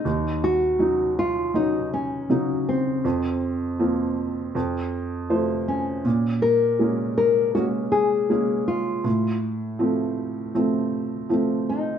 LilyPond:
<<
  \new Staff \with { instrumentName = "Nylon-string guitar" } { \time 4/4 \key f \phrygian \tempo 4 = 80 ees'8 ges'4 f'8 ees'8 des'4 c'8~ | c'4. r2 des'8~ | des'8 bes'4 bes'8 ges'8 aes'4 f'8~ | f'8 r2. ees'8 | }
  \new Staff \with { instrumentName = "Felt piano" } { \time 4/4 \key f \phrygian ees,4 <ges des' ees'>4 <ges des' ees'>4 <des ges ees'>4 | f,4 <f bes c'>4 f,4 <f a c''>4 | bes,4 <aes bes des'>4 <aes bes des'>4 <aes bes des'>4 | a,4 <f a c'>4 <f a c'>4 <f a c'>4 | }
>>